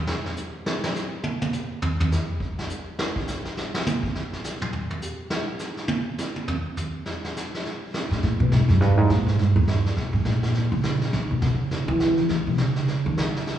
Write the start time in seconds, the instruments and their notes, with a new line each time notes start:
0.07 snare
0.26 snare
0.37 hi-hat pedal
0.66 snare
0.84 snare
0.95 snare, hi-hat pedal
1.23 high tom
1.42 high tom
1.53 hi-hat pedal, high tom
1.82 floor tom
2.00 floor tom
2.12 snare, hi-hat pedal
2.40 kick
2.58 snare
2.70 hi-hat pedal
2.99 snare
3.16 kick
3.27 snare, hi-hat pedal
3.45 snare
3.57 snare
3.74 snare
3.86 hi-hat pedal, high tom
4.03 kick
4.15 snare
4.33 snare
4.44 snare, hi-hat pedal
4.62 mid tom
4.73 floor tom
4.90 floor tom
5.02 hi-hat pedal
5.30 snare
5.59 snare, hi-hat pedal
5.77 snare
5.88 high tom
6.18 snare, hi-hat pedal
6.36 high tom
6.48 floor tom
6.77 floor tom, hi-hat pedal
7.06 snare
7.24 snare
7.36 snare, hi-hat pedal
7.54 snare
7.65 brush sweep, snare
7.94 snare
8.11 upright bass A2, snare
8.22 upright bass A#2, brush sweep, snare
8.40 upright bass B2
8.52 upright bass G#2, snare
8.69 upright bass F#2, snare
8.80 upright bass G2, brush sweep, snare
8.97 upright bass G#2
9.10 upright bass A#2, snare
9.27 upright bass G#2, snare
9.39 upright bass G2, brush sweep, snare
9.56 upright bass D#2
9.68 snare
9.86 snare
9.97 upright bass B2, brush sweep, snare
10.13 upright bass G#2
10.25 upright bass A#2, snare
10.43 snare
10.54 brush sweep, snare
10.72 upright bass C#3
10.83 snare
11.01 snare
11.13 upright bass D#3, brush sweep, snare
11.31 upright bass B2
11.42 upright bass C#3, snare
11.71 brush sweep, snare
11.88 upright bass E3
12.00 snare
12.17 snare
12.29 upright bass D#3, brush sweep, snare
12.47 upright bass B2
12.58 upright bass C#3, snare
12.76 snare
12.88 brush sweep, snare
13.06 upright bass D#3
13.17 snare
13.36 snare
13.47 brush sweep, snare